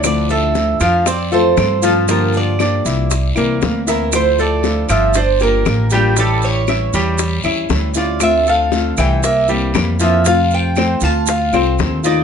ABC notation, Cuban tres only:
X:1
M:4/4
L:1/8
Q:1/4=118
K:Dm
V:1 name="Cuban tres"
d e2 f d c2 A | B d6 B | c d2 e c B2 G | A ^c6 d |
e f2 g e z2 e | f g2 a f z2 d |]